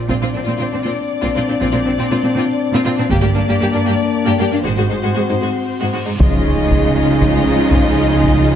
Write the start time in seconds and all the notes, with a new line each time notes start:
0.08 A#1 A#2 C4 D4 F4 D5, taiko
0.22 A#2 C4 F4
0.34 A#2 C4 D4
0.45 A#2 C4 F4
0.58 A#2 C4 F4
0.72 A#2 C4 D4
0.83 A#2 C4 F4
1.22 A#2 C4 F4, taiko
1.36 A#2 C4 F4
1.48 A#2 C4 D4
1.61 A#1 A#2 C4 F4
1.72 A#2 C4 F4
1.85 A#2 C4 D4
1.98 A#2 C4 F4
2.11 A#2 C4 F4
2.23 A#2 C4 D4
2.35 A#2 C4 F4
2.73 A#2 C4 F4
2.85 A#2 C4 F4
2.98 A#2 C4 D4
3.10 G1 G2 A#3 D4 G4 D5, taiko
3.21 G2 A#3 G4
3.35 G2 A#3 D4
3.48 G2 A#3 G4
3.60 G2 A#3 G4
3.73 G2 A#3 D4
3.85 G2 A#3 G4
4.25 G2 A#3 G4
4.38 G2 A#3 G4
4.51 G2 A#3 D4
4.63 G#1 G#2 G#3 C4 F#4 C5, reverse cymbal
4.76 G#2 G#3 F#4
4.89 G#2 G#3 D#4
5.02 G#2 G#3 F#4
5.14 G#2 G#3 F#4
5.28 G#2 G#3 D#4
5.41 G#2 G#3 F#4
5.80 G#2 G#3 F#4
5.93 G#2 G#3 F#4
6.06 G#2 G#3 D#4
6.18 C#2 C#3 F3 G#3 D#4 F4 G#4 D#5, taiko, impact
6.71 taiko
7.21 taiko
7.73 taiko
8.23 taiko